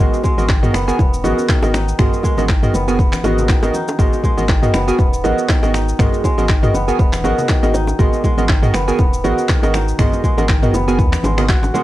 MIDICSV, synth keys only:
0, 0, Header, 1, 2, 480
1, 0, Start_track
1, 0, Key_signature, 5, "minor"
1, 0, Tempo, 500000
1, 1909, Time_signature, 4, 2, 24, 8
1, 11360, End_track
2, 0, Start_track
2, 0, Title_t, "Synth keys"
2, 0, Program_c, 0, 88
2, 0, Note_on_c, 0, 59, 95
2, 0, Note_on_c, 0, 66, 92
2, 0, Note_on_c, 0, 68, 90
2, 0, Note_on_c, 0, 70, 87
2, 0, Note_on_c, 0, 75, 102
2, 331, Note_off_c, 0, 59, 0
2, 331, Note_off_c, 0, 66, 0
2, 331, Note_off_c, 0, 68, 0
2, 331, Note_off_c, 0, 70, 0
2, 331, Note_off_c, 0, 75, 0
2, 364, Note_on_c, 0, 68, 89
2, 364, Note_on_c, 0, 75, 108
2, 365, Note_on_c, 0, 59, 95
2, 365, Note_on_c, 0, 66, 93
2, 365, Note_on_c, 0, 70, 95
2, 429, Note_off_c, 0, 68, 0
2, 429, Note_off_c, 0, 75, 0
2, 430, Note_off_c, 0, 59, 0
2, 430, Note_off_c, 0, 66, 0
2, 430, Note_off_c, 0, 70, 0
2, 601, Note_on_c, 0, 70, 90
2, 601, Note_on_c, 0, 75, 108
2, 602, Note_on_c, 0, 59, 102
2, 602, Note_on_c, 0, 66, 91
2, 602, Note_on_c, 0, 68, 91
2, 707, Note_off_c, 0, 70, 0
2, 708, Note_off_c, 0, 59, 0
2, 708, Note_off_c, 0, 66, 0
2, 708, Note_off_c, 0, 68, 0
2, 708, Note_off_c, 0, 75, 0
2, 841, Note_on_c, 0, 70, 91
2, 842, Note_on_c, 0, 59, 100
2, 842, Note_on_c, 0, 66, 87
2, 842, Note_on_c, 0, 68, 92
2, 842, Note_on_c, 0, 80, 115
2, 947, Note_off_c, 0, 70, 0
2, 948, Note_off_c, 0, 59, 0
2, 948, Note_off_c, 0, 66, 0
2, 948, Note_off_c, 0, 68, 0
2, 948, Note_off_c, 0, 80, 0
2, 1189, Note_on_c, 0, 66, 89
2, 1189, Note_on_c, 0, 68, 88
2, 1189, Note_on_c, 0, 70, 90
2, 1189, Note_on_c, 0, 75, 105
2, 1190, Note_on_c, 0, 59, 100
2, 1530, Note_off_c, 0, 66, 0
2, 1531, Note_off_c, 0, 59, 0
2, 1531, Note_off_c, 0, 68, 0
2, 1531, Note_off_c, 0, 70, 0
2, 1531, Note_off_c, 0, 75, 0
2, 1563, Note_on_c, 0, 66, 92
2, 1564, Note_on_c, 0, 59, 101
2, 1564, Note_on_c, 0, 68, 88
2, 1564, Note_on_c, 0, 70, 90
2, 1564, Note_on_c, 0, 75, 106
2, 1668, Note_off_c, 0, 66, 0
2, 1669, Note_off_c, 0, 59, 0
2, 1669, Note_off_c, 0, 68, 0
2, 1669, Note_off_c, 0, 70, 0
2, 1669, Note_off_c, 0, 75, 0
2, 1909, Note_on_c, 0, 59, 96
2, 1909, Note_on_c, 0, 66, 87
2, 1909, Note_on_c, 0, 70, 90
2, 1910, Note_on_c, 0, 68, 86
2, 1910, Note_on_c, 0, 75, 104
2, 2251, Note_off_c, 0, 59, 0
2, 2251, Note_off_c, 0, 66, 0
2, 2251, Note_off_c, 0, 68, 0
2, 2251, Note_off_c, 0, 70, 0
2, 2251, Note_off_c, 0, 75, 0
2, 2283, Note_on_c, 0, 59, 99
2, 2283, Note_on_c, 0, 66, 90
2, 2283, Note_on_c, 0, 75, 111
2, 2284, Note_on_c, 0, 68, 90
2, 2284, Note_on_c, 0, 70, 91
2, 2349, Note_off_c, 0, 59, 0
2, 2349, Note_off_c, 0, 66, 0
2, 2349, Note_off_c, 0, 68, 0
2, 2349, Note_off_c, 0, 70, 0
2, 2349, Note_off_c, 0, 75, 0
2, 2523, Note_on_c, 0, 68, 88
2, 2523, Note_on_c, 0, 70, 93
2, 2523, Note_on_c, 0, 75, 114
2, 2524, Note_on_c, 0, 59, 97
2, 2524, Note_on_c, 0, 66, 91
2, 2628, Note_off_c, 0, 68, 0
2, 2628, Note_off_c, 0, 70, 0
2, 2628, Note_off_c, 0, 75, 0
2, 2629, Note_off_c, 0, 59, 0
2, 2629, Note_off_c, 0, 66, 0
2, 2761, Note_on_c, 0, 66, 88
2, 2762, Note_on_c, 0, 59, 104
2, 2762, Note_on_c, 0, 68, 88
2, 2762, Note_on_c, 0, 80, 113
2, 2763, Note_on_c, 0, 70, 93
2, 2867, Note_off_c, 0, 66, 0
2, 2868, Note_off_c, 0, 59, 0
2, 2868, Note_off_c, 0, 68, 0
2, 2868, Note_off_c, 0, 70, 0
2, 2868, Note_off_c, 0, 80, 0
2, 3109, Note_on_c, 0, 59, 96
2, 3109, Note_on_c, 0, 66, 90
2, 3109, Note_on_c, 0, 68, 89
2, 3109, Note_on_c, 0, 70, 86
2, 3109, Note_on_c, 0, 75, 108
2, 3450, Note_off_c, 0, 68, 0
2, 3451, Note_off_c, 0, 59, 0
2, 3451, Note_off_c, 0, 66, 0
2, 3451, Note_off_c, 0, 70, 0
2, 3451, Note_off_c, 0, 75, 0
2, 3482, Note_on_c, 0, 59, 102
2, 3482, Note_on_c, 0, 66, 94
2, 3482, Note_on_c, 0, 68, 89
2, 3482, Note_on_c, 0, 70, 90
2, 3482, Note_on_c, 0, 75, 109
2, 3588, Note_off_c, 0, 59, 0
2, 3588, Note_off_c, 0, 66, 0
2, 3588, Note_off_c, 0, 68, 0
2, 3588, Note_off_c, 0, 70, 0
2, 3588, Note_off_c, 0, 75, 0
2, 3828, Note_on_c, 0, 66, 85
2, 3828, Note_on_c, 0, 68, 86
2, 3828, Note_on_c, 0, 70, 88
2, 3829, Note_on_c, 0, 59, 95
2, 3829, Note_on_c, 0, 75, 106
2, 4170, Note_off_c, 0, 66, 0
2, 4170, Note_off_c, 0, 68, 0
2, 4170, Note_off_c, 0, 70, 0
2, 4170, Note_off_c, 0, 75, 0
2, 4171, Note_off_c, 0, 59, 0
2, 4200, Note_on_c, 0, 59, 101
2, 4200, Note_on_c, 0, 68, 90
2, 4200, Note_on_c, 0, 75, 110
2, 4201, Note_on_c, 0, 66, 89
2, 4201, Note_on_c, 0, 70, 90
2, 4267, Note_off_c, 0, 59, 0
2, 4267, Note_off_c, 0, 68, 0
2, 4267, Note_off_c, 0, 75, 0
2, 4268, Note_off_c, 0, 66, 0
2, 4268, Note_off_c, 0, 70, 0
2, 4441, Note_on_c, 0, 59, 99
2, 4441, Note_on_c, 0, 66, 92
2, 4441, Note_on_c, 0, 75, 106
2, 4442, Note_on_c, 0, 68, 91
2, 4442, Note_on_c, 0, 70, 92
2, 4547, Note_off_c, 0, 75, 0
2, 4548, Note_off_c, 0, 59, 0
2, 4548, Note_off_c, 0, 66, 0
2, 4548, Note_off_c, 0, 68, 0
2, 4548, Note_off_c, 0, 70, 0
2, 4681, Note_on_c, 0, 80, 112
2, 4682, Note_on_c, 0, 59, 100
2, 4682, Note_on_c, 0, 66, 93
2, 4682, Note_on_c, 0, 68, 91
2, 4683, Note_on_c, 0, 70, 92
2, 4788, Note_off_c, 0, 59, 0
2, 4788, Note_off_c, 0, 66, 0
2, 4788, Note_off_c, 0, 68, 0
2, 4788, Note_off_c, 0, 70, 0
2, 4788, Note_off_c, 0, 80, 0
2, 5028, Note_on_c, 0, 66, 90
2, 5028, Note_on_c, 0, 75, 104
2, 5029, Note_on_c, 0, 59, 96
2, 5029, Note_on_c, 0, 68, 90
2, 5029, Note_on_c, 0, 70, 90
2, 5370, Note_off_c, 0, 59, 0
2, 5370, Note_off_c, 0, 66, 0
2, 5370, Note_off_c, 0, 70, 0
2, 5370, Note_off_c, 0, 75, 0
2, 5371, Note_off_c, 0, 68, 0
2, 5402, Note_on_c, 0, 70, 93
2, 5403, Note_on_c, 0, 59, 96
2, 5403, Note_on_c, 0, 66, 93
2, 5403, Note_on_c, 0, 68, 93
2, 5403, Note_on_c, 0, 75, 111
2, 5508, Note_off_c, 0, 59, 0
2, 5508, Note_off_c, 0, 66, 0
2, 5508, Note_off_c, 0, 68, 0
2, 5508, Note_off_c, 0, 70, 0
2, 5508, Note_off_c, 0, 75, 0
2, 5750, Note_on_c, 0, 66, 87
2, 5750, Note_on_c, 0, 68, 89
2, 5750, Note_on_c, 0, 70, 87
2, 5751, Note_on_c, 0, 59, 97
2, 5751, Note_on_c, 0, 75, 101
2, 6091, Note_off_c, 0, 66, 0
2, 6091, Note_off_c, 0, 68, 0
2, 6091, Note_off_c, 0, 70, 0
2, 6091, Note_off_c, 0, 75, 0
2, 6092, Note_off_c, 0, 59, 0
2, 6123, Note_on_c, 0, 59, 99
2, 6123, Note_on_c, 0, 70, 92
2, 6123, Note_on_c, 0, 75, 108
2, 6124, Note_on_c, 0, 66, 92
2, 6124, Note_on_c, 0, 68, 93
2, 6189, Note_off_c, 0, 59, 0
2, 6189, Note_off_c, 0, 66, 0
2, 6189, Note_off_c, 0, 68, 0
2, 6189, Note_off_c, 0, 70, 0
2, 6189, Note_off_c, 0, 75, 0
2, 6362, Note_on_c, 0, 59, 100
2, 6362, Note_on_c, 0, 68, 91
2, 6362, Note_on_c, 0, 70, 91
2, 6362, Note_on_c, 0, 75, 113
2, 6363, Note_on_c, 0, 66, 96
2, 6468, Note_off_c, 0, 59, 0
2, 6468, Note_off_c, 0, 66, 0
2, 6468, Note_off_c, 0, 68, 0
2, 6468, Note_off_c, 0, 70, 0
2, 6468, Note_off_c, 0, 75, 0
2, 6603, Note_on_c, 0, 59, 99
2, 6603, Note_on_c, 0, 66, 91
2, 6603, Note_on_c, 0, 70, 91
2, 6603, Note_on_c, 0, 80, 110
2, 6604, Note_on_c, 0, 68, 88
2, 6708, Note_off_c, 0, 59, 0
2, 6708, Note_off_c, 0, 66, 0
2, 6708, Note_off_c, 0, 70, 0
2, 6708, Note_off_c, 0, 80, 0
2, 6709, Note_off_c, 0, 68, 0
2, 6949, Note_on_c, 0, 59, 98
2, 6949, Note_on_c, 0, 68, 93
2, 6949, Note_on_c, 0, 75, 104
2, 6950, Note_on_c, 0, 66, 92
2, 6950, Note_on_c, 0, 70, 92
2, 7291, Note_off_c, 0, 59, 0
2, 7291, Note_off_c, 0, 66, 0
2, 7291, Note_off_c, 0, 68, 0
2, 7291, Note_off_c, 0, 70, 0
2, 7291, Note_off_c, 0, 75, 0
2, 7322, Note_on_c, 0, 59, 102
2, 7322, Note_on_c, 0, 66, 93
2, 7322, Note_on_c, 0, 68, 93
2, 7322, Note_on_c, 0, 70, 95
2, 7322, Note_on_c, 0, 75, 109
2, 7428, Note_off_c, 0, 59, 0
2, 7428, Note_off_c, 0, 66, 0
2, 7428, Note_off_c, 0, 68, 0
2, 7428, Note_off_c, 0, 70, 0
2, 7428, Note_off_c, 0, 75, 0
2, 7669, Note_on_c, 0, 68, 90
2, 7669, Note_on_c, 0, 75, 109
2, 7670, Note_on_c, 0, 59, 98
2, 7670, Note_on_c, 0, 66, 88
2, 7670, Note_on_c, 0, 70, 88
2, 8011, Note_off_c, 0, 59, 0
2, 8011, Note_off_c, 0, 66, 0
2, 8011, Note_off_c, 0, 68, 0
2, 8011, Note_off_c, 0, 70, 0
2, 8011, Note_off_c, 0, 75, 0
2, 8042, Note_on_c, 0, 66, 93
2, 8042, Note_on_c, 0, 70, 94
2, 8043, Note_on_c, 0, 59, 101
2, 8043, Note_on_c, 0, 68, 90
2, 8043, Note_on_c, 0, 75, 112
2, 8108, Note_off_c, 0, 66, 0
2, 8109, Note_off_c, 0, 59, 0
2, 8109, Note_off_c, 0, 68, 0
2, 8109, Note_off_c, 0, 70, 0
2, 8109, Note_off_c, 0, 75, 0
2, 8282, Note_on_c, 0, 59, 99
2, 8282, Note_on_c, 0, 66, 90
2, 8282, Note_on_c, 0, 68, 88
2, 8282, Note_on_c, 0, 75, 111
2, 8283, Note_on_c, 0, 70, 93
2, 8388, Note_off_c, 0, 59, 0
2, 8388, Note_off_c, 0, 66, 0
2, 8388, Note_off_c, 0, 68, 0
2, 8388, Note_off_c, 0, 70, 0
2, 8388, Note_off_c, 0, 75, 0
2, 8521, Note_on_c, 0, 66, 93
2, 8521, Note_on_c, 0, 68, 89
2, 8521, Note_on_c, 0, 70, 90
2, 8521, Note_on_c, 0, 80, 110
2, 8522, Note_on_c, 0, 59, 101
2, 8627, Note_off_c, 0, 66, 0
2, 8627, Note_off_c, 0, 68, 0
2, 8627, Note_off_c, 0, 70, 0
2, 8627, Note_off_c, 0, 80, 0
2, 8628, Note_off_c, 0, 59, 0
2, 8869, Note_on_c, 0, 68, 89
2, 8869, Note_on_c, 0, 70, 90
2, 8870, Note_on_c, 0, 59, 95
2, 8870, Note_on_c, 0, 66, 94
2, 8870, Note_on_c, 0, 75, 106
2, 9211, Note_off_c, 0, 59, 0
2, 9211, Note_off_c, 0, 66, 0
2, 9211, Note_off_c, 0, 68, 0
2, 9211, Note_off_c, 0, 70, 0
2, 9211, Note_off_c, 0, 75, 0
2, 9243, Note_on_c, 0, 59, 103
2, 9243, Note_on_c, 0, 66, 93
2, 9243, Note_on_c, 0, 70, 97
2, 9243, Note_on_c, 0, 75, 112
2, 9244, Note_on_c, 0, 68, 93
2, 9348, Note_off_c, 0, 59, 0
2, 9348, Note_off_c, 0, 66, 0
2, 9348, Note_off_c, 0, 70, 0
2, 9348, Note_off_c, 0, 75, 0
2, 9349, Note_off_c, 0, 68, 0
2, 9588, Note_on_c, 0, 59, 99
2, 9588, Note_on_c, 0, 66, 88
2, 9588, Note_on_c, 0, 70, 87
2, 9588, Note_on_c, 0, 75, 111
2, 9589, Note_on_c, 0, 68, 85
2, 9930, Note_off_c, 0, 59, 0
2, 9930, Note_off_c, 0, 66, 0
2, 9930, Note_off_c, 0, 70, 0
2, 9930, Note_off_c, 0, 75, 0
2, 9931, Note_off_c, 0, 68, 0
2, 9962, Note_on_c, 0, 59, 101
2, 9962, Note_on_c, 0, 66, 92
2, 9962, Note_on_c, 0, 70, 90
2, 9962, Note_on_c, 0, 75, 108
2, 9963, Note_on_c, 0, 68, 93
2, 10028, Note_off_c, 0, 59, 0
2, 10028, Note_off_c, 0, 66, 0
2, 10028, Note_off_c, 0, 70, 0
2, 10029, Note_off_c, 0, 68, 0
2, 10029, Note_off_c, 0, 75, 0
2, 10201, Note_on_c, 0, 68, 93
2, 10201, Note_on_c, 0, 70, 93
2, 10202, Note_on_c, 0, 59, 104
2, 10202, Note_on_c, 0, 66, 92
2, 10202, Note_on_c, 0, 75, 110
2, 10307, Note_off_c, 0, 68, 0
2, 10307, Note_off_c, 0, 70, 0
2, 10308, Note_off_c, 0, 59, 0
2, 10308, Note_off_c, 0, 66, 0
2, 10308, Note_off_c, 0, 75, 0
2, 10441, Note_on_c, 0, 68, 91
2, 10442, Note_on_c, 0, 59, 105
2, 10442, Note_on_c, 0, 66, 89
2, 10442, Note_on_c, 0, 70, 96
2, 10442, Note_on_c, 0, 80, 112
2, 10547, Note_off_c, 0, 68, 0
2, 10548, Note_off_c, 0, 59, 0
2, 10548, Note_off_c, 0, 66, 0
2, 10548, Note_off_c, 0, 70, 0
2, 10548, Note_off_c, 0, 80, 0
2, 10922, Note_on_c, 0, 59, 81
2, 10923, Note_on_c, 0, 68, 75
2, 10923, Note_on_c, 0, 70, 76
2, 10923, Note_on_c, 0, 75, 89
2, 10924, Note_on_c, 0, 66, 77
2, 10988, Note_off_c, 0, 59, 0
2, 10989, Note_off_c, 0, 66, 0
2, 10989, Note_off_c, 0, 68, 0
2, 10989, Note_off_c, 0, 70, 0
2, 10989, Note_off_c, 0, 75, 0
2, 11269, Note_on_c, 0, 66, 86
2, 11270, Note_on_c, 0, 68, 88
2, 11270, Note_on_c, 0, 70, 86
2, 11270, Note_on_c, 0, 78, 102
2, 11271, Note_on_c, 0, 59, 95
2, 11360, Note_off_c, 0, 59, 0
2, 11360, Note_off_c, 0, 66, 0
2, 11360, Note_off_c, 0, 68, 0
2, 11360, Note_off_c, 0, 70, 0
2, 11360, Note_off_c, 0, 78, 0
2, 11360, End_track
0, 0, End_of_file